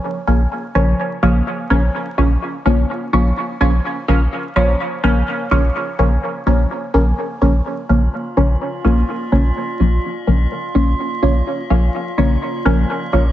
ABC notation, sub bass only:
X:1
M:4/4
L:1/8
Q:"Swing 16ths" 1/4=126
K:Bbm
V:1 name="Sub bass" clef=bass
z B,,, z B,,, z B,,, z B,,, | z B,,, z B,,, z B,,, z B,,, | z B,,, z B,,, z B,,, z B,,, | z B,,, z B,,, z B,,, z B,,, |
z B,,, z B,,, z B,,, z B,,, | z B,,, z B,,, z B,,, z B,,, | z B,,, z B,,, z B,,, z B,,, |]